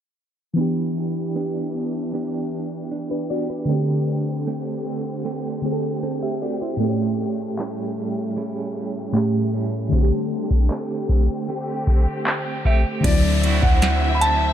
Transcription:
0.54 fm electric piano E3 B3, clean electric guitar E3
0.58 string section E3 D4 G4, fm electric piano D4 G4
1.35 clean electric guitar B3 D4 G4
1.74 clean electric guitar B3
2.14 clean electric guitar B3 D4 G4
2.91 clean electric guitar D4
3.11 fm electric piano D4 B4
3.30 clean electric guitar B3 D4 G4, fm electric piano F#4 D5
3.50 fm electric piano D4 B4
3.65 fm electric piano D3 A3, clean electric guitar D3
3.70 string section D3 C4, fm electric piano C4 G4
4.47 clean electric guitar A3 C4 G4
4.86 clean electric guitar A3
5.25 clean electric guitar A3 C4 G4
5.62 fm electric piano D3 A3 C4 G#4
5.72 fm electric piano A4
6.03 clean electric guitar C4, fm electric piano C4 A4
6.23 fm electric piano G4 E5
6.42 clean electric guitar A3 C4 G4, fm electric piano F#4 D5
6.62 fm electric piano E4 C5
6.77 fm electric piano A2 A3, clean electric guitar A2, string section A3
6.81 string section C#3, fm electric piano C4 G4
6.88 fm electric piano C#4
7.59 clean electric guitar G3 C#4 E4, clap
7.97 clean electric guitar G3
8.36 clean electric guitar G3 C#4 E4
9.13 fm electric piano A2 A3 C#4 G4, clean electric guitar A2, string section A3, clap
9.53 clean electric guitar G3 C#4 E4
9.89 fm electric piano D3 A3, string section D3 C4 G4, clean electric guitar D3, kick
9.94 fm electric piano C4 F#4
10.03 fm electric piano G4
10.51 kick
10.71 clean electric guitar A3 C4 G4, clap
11.09 clean electric guitar A3, kick
11.48 clean electric guitar A3 C4 G4
11.87 kick
12.26 clean electric guitar C4, clap
12.65 clean electric guitar A3 C4 G4, grand piano E5, kick
13.01 808-style bass D2, fm electric piano D3 C4, clean electric guitar D3, string section E4 C5 E5, kick, closed hi-hat, crash, downlifter
13.05 fm electric piano F#3 E4, grand piano D5
13.43 clean electric guitar C4 E4 F#4, closed hi-hat
13.62 808-style bass D2, grand piano F#5, kick
13.82 clean electric guitar C4, snare, closed hi-hat
14.15 grand piano B5
14.21 grand piano A5, closed hi-hat

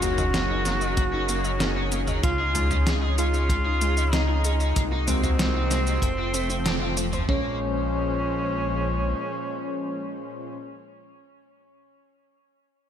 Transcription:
Already playing: analog synth bass F#1, supersaw synth F#3 C#4 D#4 G#4 A#4
0.02 overdriven electric guitar A#3, synth arpeggio sound A#3, tenor saxophone F#4, fm electric piano F#4, closed hi-hat, mid tom, shaker
0.18 overdriven electric guitar F#3, synth arpeggio sound D#5, mid tom, shaker
0.34 synth arpeggio sound A#3, overdriven electric guitar C#4, snare, closed hi-hat, shaker
0.50 overdriven electric guitar C#4, synth arpeggio sound D#4
0.65 overdriven electric guitar F#3, synth arpeggio sound A#3, snare, closed hi-hat, shaker
0.81 overdriven electric guitar F#3, synth arpeggio sound D#5, shaker
0.97 overdriven electric guitar F#3, synth arpeggio sound A#3, kick, closed hi-hat, shaker
1.13 overdriven electric guitar C#4, synth arpeggio sound D#4
1.29 overdriven electric guitar A#3, synth arpeggio sound A#3, closed hi-hat, shaker
1.45 overdriven electric guitar F#3, synth arpeggio sound D#5, shaker
1.60 synth arpeggio sound A#3, overdriven electric guitar C#4, snare, closed hi-hat, shaker
1.76 overdriven electric guitar C#4, synth arpeggio sound D#4
1.92 overdriven electric guitar F#3, synth arpeggio sound A#3, closed hi-hat, shaker
2.08 overdriven electric guitar F#3, synth arpeggio sound D#5, mid tom, shaker
2.23 analog synth bass C#2, supersaw synth C#3, synth arpeggio sound G#3, overdriven electric guitar C#4, tenor saxophone F4, fm electric piano F4, kick, closed hi-hat, shaker
2.39 synth arpeggio sound D#4, overdriven electric guitar G#4
2.55 synth arpeggio sound G#3, overdriven electric guitar F4, closed hi-hat, mid tom, shaker
2.71 overdriven electric guitar C#4, synth arpeggio sound D#5, mid tom, shaker
2.87 synth arpeggio sound G#3, overdriven electric guitar G#4, snare, closed hi-hat, shaker
3.02 synth arpeggio sound D#4, overdriven electric guitar G#4
3.18 synth arpeggio sound G#3, overdriven electric guitar C#4, fm electric piano F4, tenor saxophone F4, closed hi-hat, shaker
3.34 overdriven electric guitar C#4, synth arpeggio sound D#5, shaker
3.49 synth arpeggio sound G#3, overdriven electric guitar C#4, kick, closed hi-hat, shaker
3.66 synth arpeggio sound D#4, overdriven electric guitar G#4
3.81 synth arpeggio sound G#3, overdriven electric guitar F4, closed hi-hat, shaker
3.97 overdriven electric guitar C#4, synth arpeggio sound D#5, shaker
4.13 synth arpeggio sound G#3, fm electric piano D#4, tenor saxophone D#4, overdriven electric guitar G#4, snare, closed hi-hat, shaker
4.29 synth arpeggio sound D#4, overdriven electric guitar G#4
4.45 synth arpeggio sound G#3, overdriven electric guitar C#4, closed hi-hat, shaker
4.60 overdriven electric guitar C#4, synth arpeggio sound D#5, shaker
4.76 analog synth bass C2, supersaw synth C3 G#3 A#3 F#4, synth arpeggio sound G#3, overdriven electric guitar G#3, kick, closed hi-hat, shaker
4.92 synth arpeggio sound D#4, overdriven electric guitar D#4
5.08 synth arpeggio sound G#3, fm electric piano C4, overdriven electric guitar C4, tenor saxophone C4, closed hi-hat, mid tom, shaker
5.23 overdriven electric guitar G#3, synth arpeggio sound D#5, mid tom, shaker
5.39 synth arpeggio sound G#3, overdriven electric guitar D#4, snare, closed hi-hat, shaker
5.55 synth arpeggio sound D#4, overdriven electric guitar D#4
5.71 synth arpeggio sound G#3, overdriven electric guitar G#3, snare, closed hi-hat, shaker
5.87 overdriven electric guitar G#3, synth arpeggio sound D#5, shaker
6.02 analog synth bass F1, overdriven electric guitar F3, synth arpeggio sound A3, supersaw synth A3, kick, closed hi-hat, shaker
6.18 overdriven electric guitar C4, synth arpeggio sound F4
6.34 overdriven electric guitar A3, synth arpeggio sound C4, closed hi-hat, shaker
6.50 overdriven electric guitar F3, synth arpeggio sound C4, shaker
6.66 overdriven electric guitar C4, synth arpeggio sound A4, snare, closed hi-hat, shaker
6.81 overdriven electric guitar C4, synth arpeggio sound F4
6.97 overdriven electric guitar F3, synth arpeggio sound C5, closed hi-hat, shaker
7.13 overdriven electric guitar F3, synth arpeggio sound C5, mid tom, shaker
7.29 analog synth bass A#1, supersaw synth A#2 F3 G#3 C#4 C5, synth arpeggio sound G#3, overdriven electric guitar A#3, fm electric piano C#4, tenor saxophone C#4, kick

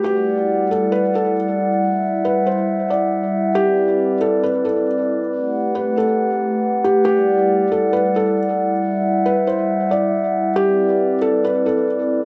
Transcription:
0.04 glass harmonica G3 E4 D5 F#5, felt piano G4
0.71 felt piano A4
0.92 felt piano B4
1.15 felt piano A4
1.81 glass harmonica E5
2.25 felt piano B4
2.47 felt piano C5
2.90 felt piano D5
3.55 glass harmonica C4 B4 D5, felt piano G4
4.21 felt piano A4
4.43 felt piano B4
4.65 felt piano A4
5.31 glass harmonica A3 G4 F#5
5.75 felt piano B4
5.97 felt piano A4
6.84 felt piano G4
7.05 glass harmonica G3 E4 D5, felt piano G4
7.72 felt piano A4
7.93 felt piano B4
8.16 felt piano A4
8.81 glass harmonica E5
9.26 felt piano B4
9.47 felt piano C5
9.91 felt piano D5
10.56 glass harmonica C4 B4 D5, felt piano G4
11.22 felt piano A4
11.45 felt piano B4
11.66 felt piano A4

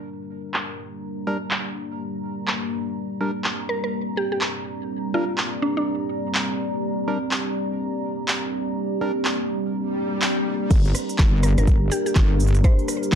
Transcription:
Already playing: analog synth pad G3 A#3 D4 A#4, ambient pad G4 D5 A#5
0.54 clap
1.27 synth stab G3 D4 A#4
1.51 clap
2.47 clap
2.96 analog synth pad C4 D5
3.21 synth stab G3 D4 A#4
3.44 clap
3.69 synth pluck A#4
3.84 synth pluck A#4
4.17 synth pluck G4
4.32 synth pluck G4
4.41 clap
5.14 synth stab G3 D4 A#4, synth pluck F4
5.38 clap
5.62 synth pluck D4
5.77 synth pluck D4
6.35 clap
7.08 synth stab G3 D4 A#4
7.31 clap
8.28 clap
9.01 synth stab G3 D4 A#4
9.25 clap
9.74 swell
10.22 clap
10.70 wobble bass G1, analog synth pad G3 A#3 D4 A#4, kick, closed hi-hat, crash, cabasa
10.85 closed hi-hat
10.95 cross-stick, open hi-hat, cabasa
11.09 closed hi-hat, cabasa
11.18 wobble bass G1, kick, clap, cabasa
11.43 synth pluck A#4, cross-stick, open hi-hat, cabasa
11.58 wobble bass G1, synth pluck A#4, closed hi-hat, cabasa
11.67 kick, closed hi-hat, cabasa
11.92 synth pluck G4, open hi-hat, cabasa
12.06 synth pluck G4, closed hi-hat, cabasa
12.15 wobble bass G1, kick, clap, closed hi-hat, cabasa
12.40 open hi-hat, cabasa
12.47 closed hi-hat
12.55 closed hi-hat, cabasa
12.64 synth pluck C5, kick, closed hi-hat, cabasa
12.79 closed hi-hat
12.88 cross-stick, open hi-hat, cabasa
13.03 closed hi-hat, cabasa
13.12 clap

